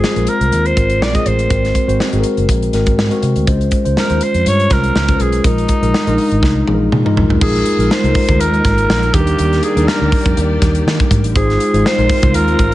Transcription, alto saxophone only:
Already playing: G#4
0.29 A#4
0.66 C5
1.02 D5
1.15 D#5
1.26 C5
3.99 A#4
4.23 C5
4.48 C#5
4.72 A#4
5.22 G#4
5.46 D#4
7.42 G#4
7.91 C5
8.40 A#4
9.14 G4
9.63 G#4
9.87 A#4
11.36 G#4
11.86 C5
12.35 A#4

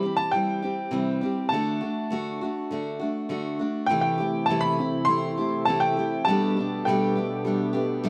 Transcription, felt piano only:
Already playing: E3 C4 E4
0.04 G4
0.34 E4
0.63 C4
0.93 E4
1.22 C4
1.52 A3
1.82 A3
2.11 D4
2.41 F#4
2.72 D4
3.01 A3
3.30 D4
3.60 A3
3.90 E3
4.20 A3
4.49 G4
4.80 C4
5.09 G4
5.38 A3
5.67 C4
5.96 G4
6.27 G3
6.56 B3
6.86 A4
7.15 D4
7.45 A4
7.75 B3
8.05 D4

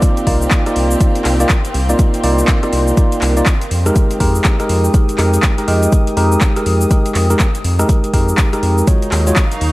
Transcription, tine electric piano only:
Already playing: A#3 D#4 F4 D5
0.27 A#3 D#4 F4 D5
0.66 A#3 D#4 F4 D5
1.01 A#3 D#4 F4 D5
1.40 A#3 D#4 F4 D5
1.89 A#3 D#4 F4 D5
2.23 A#3 D#4 F4 D5
2.63 A#3 D#4 F4 D5
2.97 A#3 D#4 F4 D5
3.37 A#3 D#4 F4 D5
3.86 G#3 D#4 G4 A#4
4.20 G#3 D#4 G4 A#4
4.60 G#3 D#4 G4 A#4
4.94 G#3 D#4 G4 A#4
5.19 G#3 D#4 G4 A#4
5.58 G#3 D#4 G4 A#4
5.68 G#3 D#4 G4 A#4
6.17 G#3 D#4 G4 A#4
6.56 G#3 D#4 G4 A#4
6.91 G#3 D#4 G4 A#4
7.30 G#3 D#4 G4 A#4
7.79 G#3 D#4 G4 A#4
8.14 G#3 D#4 G4 A#4
8.53 G#3 D#4 G4 A#4
8.87 G#3 F4 F#4 C#5
9.27 G#3 F4 F#4 C#5

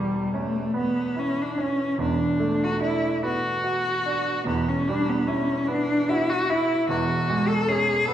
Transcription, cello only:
Already playing: G3
0.35 A3
0.77 B3
1.19 C#4
1.41 D4
1.60 C#4
2.01 D4
2.64 F#4
2.82 E4
3.25 F#4
4.47 B3
4.69 C#4
4.88 D4
5.09 B3
5.27 C#4
5.67 D4
6.09 E4
6.29 F#4
6.50 E4
6.89 F#4
7.48 A4
7.68 G#4
8.06 A4

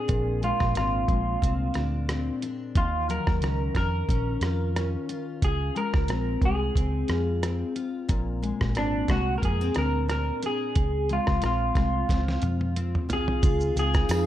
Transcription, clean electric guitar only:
Already playing: G#4
0.44 F4
0.77 F4
2.77 F4
3.11 A#4
3.77 A#4
5.45 G#4
5.77 A#4
6.45 G#4
8.78 D4
9.11 F#4
9.38 A#4
9.45 G#4
9.78 A#4
10.11 A#4
10.46 G#4
11.13 F4
11.46 F4
13.13 G#4
13.79 G#4

